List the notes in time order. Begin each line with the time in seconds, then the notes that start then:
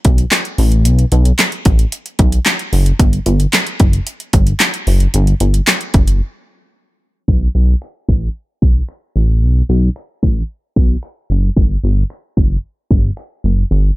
0.05 B1, kick, closed hi-hat
0.18 closed hi-hat
0.31 snare, clap, closed hi-hat
0.45 closed hi-hat
0.58 A1, open hi-hat
0.72 closed hi-hat
0.85 B1, closed hi-hat
0.99 closed hi-hat
1.12 B1, closed hi-hat
1.25 closed hi-hat
1.39 snare, clap, closed hi-hat
1.52 closed hi-hat
1.65 A1, kick, closed hi-hat
1.79 closed hi-hat
1.92 closed hi-hat
2.06 closed hi-hat
2.19 B1, kick, closed hi-hat
2.32 closed hi-hat
2.46 snare, clap, closed hi-hat
2.59 closed hi-hat
2.73 F#1, open hi-hat
2.86 closed hi-hat
2.99 G1, kick, closed hi-hat
3.13 closed hi-hat
3.26 G1, closed hi-hat
3.40 closed hi-hat
3.53 snare, clap, closed hi-hat
3.67 closed hi-hat
3.80 F#1, kick, closed hi-hat
3.93 closed hi-hat
4.07 closed hi-hat
4.20 closed hi-hat
4.33 G1, kick, closed hi-hat
4.47 closed hi-hat
4.60 snare, clap, closed hi-hat
4.74 closed hi-hat
4.87 F#1, open hi-hat
5.00 closed hi-hat
5.14 G1, closed hi-hat
5.27 closed hi-hat
5.40 G1, closed hi-hat
5.54 closed hi-hat
5.67 snare, clap, closed hi-hat
5.81 closed hi-hat
5.94 F#1, kick, closed hi-hat
6.07 closed hi-hat
7.28 B1, kick, crash
7.55 B1
7.82 finger snap
8.09 A1, kick
8.62 B1, kick
8.89 finger snap
9.16 A1
9.42 B1
9.69 B1
9.96 finger snap
10.23 A1, kick
10.76 B1, kick
11.03 finger snap
11.30 F#1
11.57 G1, kick
11.84 G1
12.10 finger snap
12.37 F#1, kick
12.91 G1, kick
13.17 finger snap
13.44 F#1
13.71 G1, closed hi-hat
13.84 closed hi-hat